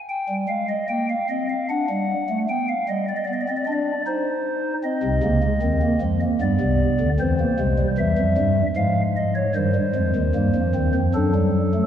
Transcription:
0.09 G5
0.29 G3
0.48 G#3 F5
0.68 D#5
0.89 A#3 G5
1.09 F5
1.29 C4 D#5
1.49 F5
1.70 D4 F#5
1.89 G3
2.29 A3
2.49 B3 G5
2.68 F5
2.89 G3 D#5
3.09 D5
3.16 D#5
3.24 B3 D5
3.33 D#5
3.41 D5
3.48 C4 D#5
3.56 D5
3.65 D4 D#5
3.72 D5
4.07 D#4 C5
4.84 C4 D#5
5.03 C2 C3
5.23 C#2 C#3 A#3
5.43 G#3
5.62 D#2 D#3 C4
5.82 A#3
6.01 F2 F3 G#3
6.21 A#3
6.41 G2 G3 B3 D5
6.61 C2 C3
7.00 D2 D3
7.20 E2 E3 C4 C5
7.40 A#3
7.60 C2 C3 G#3
7.79 G3
7.98 E2 E3 E5
8.18 F2 F3
8.38 G2 G3
8.76 G#2 F3 G#3 F5
9.16 D#5
9.36 C#5
9.55 G2 D#3 G3 C5
9.75 G3
9.95 F2 F3 G#3
10.16 D#2 D#3
10.35 G2 G3 A#3
10.55 F2 F3
10.75 D#2 D#3 C4
10.95 F2 F3
11.14 F#2 F#3 D4 A4
11.35 G3
11.74 A3

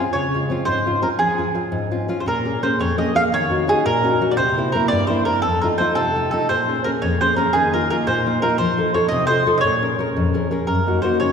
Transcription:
Already playing: C4 C#4
0.00 F4
0.13 C#3 C#5
0.34 G#3 C#4 F4
0.50 C4 C#4 F4
0.65 G#2 C5
0.85 C4 C#4 F4
1.02 C4 C#4 F4 A#4
1.19 F3 G#4
1.38 C4 C#4 F4
1.55 C4 C#4 F4
1.72 G#2
1.91 C4 C#4 F4
2.08 C4 C#4 F4
2.20 C5
2.26 A#2 A#4
2.45 A#3 C#4 G#4
2.62 A#3 C#4 G#4 C5
2.79 F2 C#5
2.97 A#3 C#4 G#4 D#5
3.15 A#3 C#4 G#4 F5
3.32 D#3 C#5
3.50 C#4 D#4 F#4
3.67 C#4 D#4 F#4 G#4
3.86 A#2 A#4
4.04 C#4 D#4 F#4
4.21 C#4 D#4 F#4
4.31 D5
4.37 C3 C5
4.57 A#3 C4 E4
4.72 A#3 C4 E4 A#4
4.88 G2 D5
5.07 A#3 C4 E4 C5
5.25 A#3 C4 E4 A#4
5.42 F2 A4
5.62 A3 D#4 F4 A#4
5.78 A3 D#4 F4 C5
5.95 C3 A4
6.16 A3 D#4 F4
6.31 A3 D#4 F4 A4
6.49 A#2 C5
6.69 A#3 C#4 G#4
6.84 A#3 C#4 G#4 A#4
7.02 F2 C#5
7.20 A#3 C#4 G#4 C5
7.36 A#3 C#4 G#4 A#4
7.53 D#3 G#4
7.73 A#3 D#4 F4 A#4
7.90 A#3 D#4 F4 A#4
8.07 A#2 C5
8.26 A#3 D#4 F4
8.42 A#3 D#4 F4 A#4
8.58 F3 C5
8.78 D#4 F4 A4
8.94 D#4 F4 A4 C#5
9.08 C3 D#5
9.27 D#4 F4 A4 C5
9.46 D#4 F4 A4
9.58 C#5 D#5
9.64 A#2
9.82 C#4 G#4 A#4
9.99 C#4 G#4 A#4
10.16 F2
10.34 C#4 G#4 A#4
10.51 C#4 G#4 A#4
10.67 F#2 A#4
10.87 A#3 D#4 F#4
11.02 A#3 D#4 F#4 C5
11.20 C#3 C#5

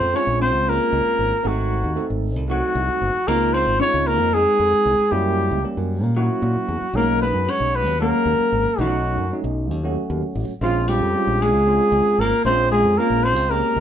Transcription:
Already playing: C4 C5
0.01 F2
0.13 G#3 C4 C#4 F4 C#5
0.27 A#1
0.41 C4 C5
0.53 C#2
0.65 G#3 A#3 C4 C#4 F4
0.69 A#4
0.93 C#2
1.06 muted fingered electric bass stroke
1.19 G#1
1.32 muted fingered electric bass stroke
1.43 G#1 F#3 A3 C4 D#4 F#4
1.47 F#4
1.84 D#2
1.96 A3 C4 D#4 A4
2.10 G#1
2.36 C2
2.48 F#3 A3 C4 D#4 F#4
2.75 C2
2.89 muted fingered electric bass stroke
3.02 F#1
3.15 muted fingered electric bass stroke
3.27 C#2 G#3 A#3 C4 D#4 F4 A#4
3.53 C4 C5
3.67 G#1
3.79 G#3 C4 C#4 D#4 F4 C#5
3.94 C#2
4.07 A#3 A#4
4.20 F2
4.33 G#3 C4 D#4 G#4
4.60 F2
4.73 muted fingered electric bass stroke
4.86 C2
4.99 muted fingered electric bass stroke
5.11 F#2 G3 A#3 C#4 E4 G4
5.51 C#2
5.63 G3 A#3 C#4 G4
5.77 F#2
6.03 A#2
6.16 F#3 A#3 C#4 E4 F#4
6.42 A#2
6.56 muted fingered electric bass stroke
6.68 E2
6.82 muted fingered electric bass stroke
6.94 B1 F#3 G#3 A#3 C#4 D#4 A#4
7.22 B3 B4
7.34 F#2
7.47 F#3 G#3 C#4 F#4 C#5
7.60 B1
7.74 B3 B4
7.86 D#2
7.99 F#3 G#3 A#3 C#4 F#4 A#4
8.26 D#2
8.39 muted fingered electric bass stroke
8.52 G#1
8.66 muted fingered electric bass stroke
8.78 B1 F#3 A3 C#4 D#4 F#4
9.17 F#2
9.32 F#3 A3 C#4 D#4
9.44 B1
9.71 D#2
9.83 F#3 A3 C#4 F#4
10.10 D#2
10.22 muted fingered electric bass stroke
10.35 A1
10.61 A#1 F3 G#3 C4 C#4 F4
10.88 G3 G4
11.01 F2
11.14 G#3 C4 C#4 F4
11.27 A#1
11.41 G#3 G#4
11.54 C#2
11.67 G#3 C4 C#4 F4
11.92 C#2
12.06 muted fingered electric bass stroke
12.18 G#1 A#3 A#4
12.32 muted fingered electric bass stroke
12.45 A#1 G#3 C4 C#4 F4 C5
12.71 G#3 G#4
12.84 F2
12.97 G#3 A#3 C4 C#4 F4 A#4
13.10 A#1
13.24 C4 C5
13.36 C#2
13.49 G#3 A#3 C4 C#4 G4 A#4
13.76 C#2

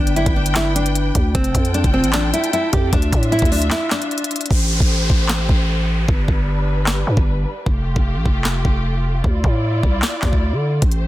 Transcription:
Already playing: G1 D4 B4 G5
0.07 closed hi-hat
0.16 E4, closed hi-hat
0.26 G1, kick, closed hi-hat
0.36 D4
0.46 closed hi-hat
0.55 E4, snare, clap, closed hi-hat
0.76 D4, closed hi-hat
0.86 closed hi-hat
0.95 closed hi-hat
1.15 D2, kick, closed hi-hat
1.35 F1 C4 F4 A4 G5, kick, closed hi-hat
1.44 closed hi-hat
1.55 F2, kick, closed hi-hat
1.65 closed hi-hat
1.74 D4, closed hi-hat
1.84 F1, kick, closed hi-hat
1.94 C4
2.04 A1, closed hi-hat
2.13 D4, snare, clap, closed hi-hat
2.33 E4, closed hi-hat
2.44 closed hi-hat
2.53 E4, closed hi-hat
2.73 F2 G4, kick, closed hi-hat
2.93 D2 D4 F4 E5, kick, closed hi-hat
3.02 closed hi-hat
3.13 A2, kick, closed hi-hat
3.23 closed hi-hat
3.32 E4, closed hi-hat
3.39 D2, kick, closed hi-hat
3.45 closed hi-hat
3.52 D4, open hi-hat
3.62 closed hi-hat
3.71 E4, snare, clap, closed hi-hat
3.91 D4, snare, clap, closed hi-hat
4.02 closed hi-hat
4.11 closed hi-hat
4.18 closed hi-hat
4.24 closed hi-hat
4.31 closed hi-hat
4.36 closed hi-hat
4.41 closed hi-hat
4.46 closed hi-hat
4.51 A1 A3 G4 C5, kick, downlifter
4.80 A1, kick
5.10 A1, kick
5.29 snare, clap
5.49 A1, kick
6.08 G1 G3 D4 B4, kick
6.28 G1, kick
6.87 snare, clap
7.07 G2
7.17 G1, kick
7.66 F1 A3 F4 G4, kick
7.96 F1, kick
8.16 A1
8.26 F1, kick
8.44 snare, clap
8.65 F1, kick
9.24 D2 E4 F4 D5, kick
9.44 A2, kick
9.83 C2, kick
10.02 snare, clap
10.22 D2, kick, snare, clap
10.33 kick
10.52 D3
10.82 A1 A3 G4 C5, kick, closed hi-hat
10.92 closed hi-hat

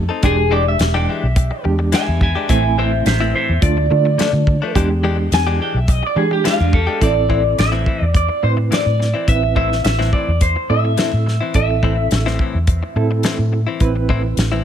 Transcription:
0.09 C4 D#4 A4
0.23 E1 E3 G#3 D4 G4 G#4, kick, closed hi-hat
0.38 muted clean electric guitar stroke
0.51 E3 G#3 D4 G4 D5
0.68 E5
0.79 E1, snare, closed hi-hat
0.94 E3 G#3 D4 G4 G5
1.08 E3 G#3 D4 G4 E5
1.23 B1
1.36 muted clean electric guitar stroke, kick, closed hi-hat
1.51 muted clean electric guitar stroke
1.64 E2 G#3 D4 G4, muted clean electric guitar stroke
1.79 muted clean electric guitar stroke
1.92 E3 G#3 D4 G4 E5 G#5, snare, closed hi-hat
2.08 E2, muted clean electric guitar stroke
2.21 E5 G#5, muted clean electric guitar stroke, kick
2.35 G#3 D4 G4
2.49 A1 A2 E3 A3 C4 E4 E5 G#5, kick, closed hi-hat
2.65 muted clean electric guitar stroke
2.78 A2 E3 C4 E4 C5 E5
2.93 muted clean electric guitar stroke
3.06 A1 C5 E5, snare, closed hi-hat
3.20 A2 E3 C4 E4
3.34 A2 E3 C4 E4 C5 E5
3.49 E2
3.62 D2 A3 D4 F4 D5, muted clean electric guitar stroke, kick, closed hi-hat
3.77 muted clean electric guitar stroke
3.90 D3 A3 D4 F4, muted clean electric guitar stroke
4.05 muted clean electric guitar stroke
4.18 D3 F3 A3 D4, snare, closed hi-hat
4.33 D3, muted clean electric guitar stroke
4.47 muted clean electric guitar stroke, kick
4.62 F3 A3 D4
4.75 E2 E3 G#3 D4 G4, kick, closed hi-hat
4.90 muted clean electric guitar stroke
5.03 E3 G#3 D4 G4
5.32 E2 G#5, snare, closed hi-hat
5.47 E3 G#3 D4 G4
5.60 E3 G#3 D4 G4 G5
5.74 B1 E5
5.88 D#5, muted clean electric guitar stroke, kick, closed hi-hat
6.03 D5, muted clean electric guitar stroke
6.16 E3 G#3 D4 G4 G#4, muted clean electric guitar stroke
6.31 G4, muted clean electric guitar stroke
6.44 E3 G#3 D4 E4 G4 F5, snare, closed hi-hat
6.60 E2 D4, muted clean electric guitar stroke
6.73 A4, muted clean electric guitar stroke, kick
6.87 G#3 D4 G4
7.00 A1 A2 E3 C4 E4 A4 D5, kick, closed hi-hat
7.29 A2 E3 C4 E4, kick
7.44 muted clean electric guitar stroke
7.58 A1 E5, snare, closed hi-hat
7.72 A2 E3 C4 E4
7.85 A2 E3 C4 E4, kick
8.01 E2 D5
8.14 D5, muted clean electric guitar stroke, kick, closed hi-hat
8.29 muted clean electric guitar stroke
8.43 A2 C4 E4 B4 C5, muted clean electric guitar stroke
8.57 muted clean electric guitar stroke
8.71 A2 E3 C4 E4 D5, snare, closed hi-hat
8.86 A2, muted clean electric guitar stroke
8.99 muted clean electric guitar stroke, snare
9.14 E3 C4 E4
9.28 A1 C4 E4 B4 E5, kick, closed hi-hat
9.43 muted clean electric guitar stroke
9.56 A2 E3 C4 E4 E5, kick
9.71 muted clean electric guitar stroke, snare
9.84 A1 E5, snare, closed hi-hat
9.99 A2 E3 C4 E4, snare
10.13 A2 E3 C4 E4 D5, kick
10.28 E2
10.41 C5, muted clean electric guitar stroke, kick, closed hi-hat
10.56 muted clean electric guitar stroke
10.70 A2 C4 E4 A4 E5, muted clean electric guitar stroke
10.85 muted clean electric guitar stroke
10.97 A2 E3 C4 E4, snare, closed hi-hat
11.13 A2
11.26 muted clean electric guitar stroke, snare
11.41 E3 C4 E4
11.54 A1 C4 E4 A4 E5, kick, closed hi-hat
11.69 muted clean electric guitar stroke
11.83 A2 E3 C4 E4, kick
11.98 muted clean electric guitar stroke
12.11 A1, snare, closed hi-hat
12.26 A2 E3 C4 E4, snare
12.39 A2 E3 C4 E4, kick
12.54 E2
12.67 muted clean electric guitar stroke, kick, closed hi-hat
12.83 muted clean electric guitar stroke
12.96 A2 C4 E4 A4, muted clean electric guitar stroke
13.11 muted clean electric guitar stroke
13.23 A2 E3 C4 E4, snare, closed hi-hat
13.39 A2, muted clean electric guitar stroke
13.52 muted clean electric guitar stroke
13.67 E3 C4 E4
13.80 A1 C4 E4 B4, kick, closed hi-hat
13.96 muted clean electric guitar stroke
14.09 A2 E3 C4 E4, kick
14.23 muted clean electric guitar stroke
14.37 A1, snare, closed hi-hat
14.52 A2 E3 C4 E4

